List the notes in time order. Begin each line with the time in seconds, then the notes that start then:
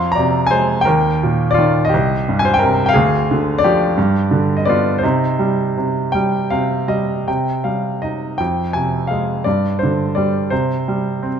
Already playing: F2 F5 C6
0.12 D5 A#5
0.18 C3
0.47 G#5
0.51 G#3 C5
0.81 A#4 G5
0.87 D#2
1.23 A#2
1.51 F4 D5
1.59 D#3
1.85 D#5
1.89 G4
1.94 C2
2.29 G2
2.39 G#5
2.45 C5
2.54 G5
2.59 C3 A#4
2.86 F5 G5
2.94 D2 G#4
3.31 D3
3.58 D5
3.64 F3 G4
3.98 G2
4.31 D3
4.57 D#5
4.65 B3 F4 D5
4.98 C5
5.03 C3 D#4
5.39 G3
5.77 C3
6.12 G3 G5
6.50 C3 F5
6.88 G3 D#5
7.27 C3 G5
7.64 G3 F5
8.02 D#4 D#5
8.38 F2 G5
8.73 C3 G#5
9.07 G#3 F5
9.44 G2 D5
9.79 C5
9.83 D3
10.15 G3 D5
10.50 C3 C5
10.88 G3
11.23 C4